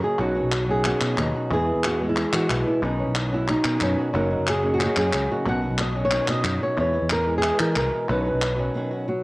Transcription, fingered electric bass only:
0.19 0.40 B1 medium
0.44 0.92 B1 medium
1.01 1.15 B2 medium
1.18 1.31 D#2 medium
1.51 1.71 E2 medium
1.75 2.24 E2 medium
2.33 2.47 E3 medium
2.49 2.63 B1 medium
2.82 3.03 B1 medium
3.07 3.56 B1 medium
3.65 3.78 B2 medium
3.81 3.95 F#2 medium
4.14 4.35 F#1 medium
4.96 5.10 F#2 medium
5.13 5.27 C#2 medium
5.46 5.66 B1 medium
5.70 6.19 B1 medium
6.28 6.42 B2 medium
6.44 6.58 F#2 medium
6.77 6.98 E2 medium
7.02 7.50 E2 medium
7.60 7.74 E3 medium
7.76 7.90 C2 medium
8.09 8.30 B1 medium
8.34 8.68 B1 medium

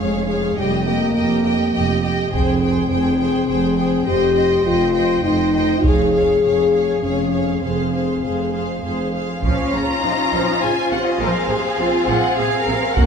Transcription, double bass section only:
0.00 0.51 F1 soft
0.58 1.09 F1 medium
1.15 1.67 F1 soft
1.74 2.26 F1 soft
2.32 2.84 F1 medium
2.90 3.42 F1 soft
3.49 4.00 F1 soft
4.07 4.59 F1 medium
4.66 5.17 F1 soft
5.24 5.77 F1 soft
5.83 6.36 F1 medium
6.43 6.95 F1 soft
7.02 7.55 F1 soft
7.62 8.15 F1 soft
8.22 8.76 F1 soft
8.83 9.36 F1 soft
9.43 9.51 A#1 soft
9.73 9.81 A#1 soft
10.03 10.11 A#1 soft
10.33 10.41 A#1 medium
10.62 10.70 A#1 soft
10.90 10.98 A#1 soft
11.19 11.27 A#1 medium
11.50 11.58 A#1 soft
11.79 11.87 A#1 soft
12.07 12.15 A#1 medium
12.38 12.46 A#1 soft
12.67 12.75 A#1 soft
12.97 13.05 A#1 medium

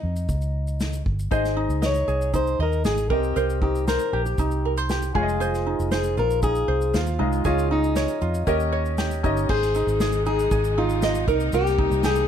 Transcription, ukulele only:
1.31 2.07 C5 medium
1.31 1.82 D#5 medium
1.57 2.33 D#4 medium
1.82 2.59 D#5 medium
2.08 2.84 G#4 medium
2.33 3.62 D#4 medium
2.60 3.36 D#5 medium
2.85 3.10 G#4 medium
3.10 3.35 A#4 medium
3.36 4.64 A#4 medium
3.36 3.88 C5 medium
3.62 4.39 D#4 medium
3.88 4.13 C5 medium
4.13 4.89 G4 medium
4.39 5.66 D#4 medium
4.65 4.77 A#4 medium
4.77 5.20 C5 soft
4.90 5.15 G4 medium
5.15 5.40 G#4 medium
5.40 6.17 G#4 medium
5.40 5.90 C5 medium
5.67 6.42 D#4 medium
5.92 6.67 C5 medium
6.17 6.93 F4 medium
6.43 7.19 D#4 medium
6.68 7.45 C5 medium
6.94 7.44 F4 medium
7.19 7.70 D#4 medium
7.45 8.21 G#4 medium
7.45 7.95 C#5 medium
7.71 8.75 D#4 medium
7.96 8.52 C#5 medium
8.22 8.47 F4 medium
8.47 9.54 A#4 medium
8.72 9.54 C#5 medium
8.98 9.49 G4 medium
9.24 9.75 D#4 medium
9.50 11.31 C5 medium
9.75 10.26 D#4 medium
10.01 10.50 G#4 medium
10.26 10.77 D#4 medium
10.51 11.28 G#4 medium
10.78 11.78 D#4 medium
11.03 12.28 D#5 medium
11.28 11.53 A#4 medium
11.54 12.28 A#4 medium
11.79 12.28 D#4 medium
12.04 12.28 G4 medium

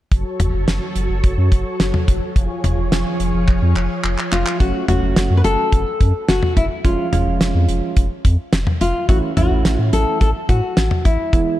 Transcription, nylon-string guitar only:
4.32 4.60 F4 medium
4.60 4.87 F#4 medium
4.88 5.37 F#4 medium
5.37 5.44 B4 medium
5.44 6.28 A4 loud
6.28 6.56 F#4 medium
6.57 6.64 E4 medium
6.85 7.93 F4 medium
8.81 9.09 F4 medium
9.09 9.17 F#4 medium
9.37 9.82 F#4 medium
9.82 9.93 E4 medium
9.93 10.20 A4 medium
10.21 10.29 A4 loud
10.49 11.07 F#4 medium
11.05 11.57 E4 medium

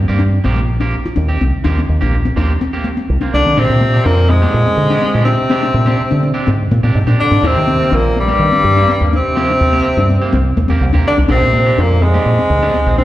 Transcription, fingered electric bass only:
0.09 0.38 G2 medium
0.45 0.94 A#1 medium
1.05 muted fingered electric bass stroke soft
1.17 1.36 D#2 medium
1.41 1.51 C2 medium
1.65 1.84 D#2 medium
1.89 1.99 D#2 medium
2.02 2.30 A#1 medium
2.36 2.56 D#2 medium
3.09 3.20 C2 medium
3.33 3.44 C2 medium
3.46 3.55 D#3 medium
3.57 3.68 A#2 medium
3.70 3.99 A#2 medium
4.05 4.45 F2 medium
4.54 4.64 A#2 loud
4.77 4.97 D3 medium
5.14 5.34 A#2 medium
5.74 5.94 A#2 loud
6.12 6.31 D3 medium
6.47 6.67 G#2 medium
6.71 6.81 A#2 medium
6.83 6.93 A#2 medium
6.95 7.05 G#2 loud
7.07 7.17 A#2 medium
7.31 7.41 G#2 medium
7.43 7.53 D#2 medium
7.56 7.85 D#3 medium
7.92 8.31 A#1 medium
8.39 8.50 D#3 medium
8.64 8.84 G2 medium
9.01 9.20 D#2 medium
9.61 9.80 D#2 medium
9.97 10.17 G2 medium
10.33 10.53 C2 medium
10.57 10.67 D#2 medium
10.69 10.79 D#2 medium
10.81 10.91 C2 loud
10.94 11.04 D#2 medium
11.18 11.27 C2 medium
11.29 11.40 A#1 medium
11.42 11.71 A#2 medium
11.78 12.17 F2 medium
12.26 12.36 A#2 medium
12.50 12.70 D2 medium
12.86 13.04 A#1 medium

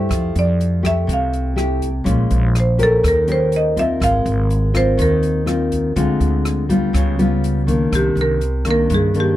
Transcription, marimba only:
0.00 0.33 C5 medium
0.39 0.82 D5 medium
0.86 1.09 E5 medium
1.13 1.56 F5 medium
2.60 2.81 C5 medium
2.83 3.05 A4 medium
3.08 3.29 A#4 medium
3.32 3.53 C5 medium
3.56 3.78 D#5 medium
3.79 4.02 E5 loud
4.04 4.72 F5 loud
4.77 4.99 C5 medium
5.02 5.46 A#4 medium
7.95 8.19 G4 medium
8.21 8.69 A#4 medium
8.71 8.91 A#4 medium
8.94 9.15 G#4 medium
9.20 9.37 G4 medium

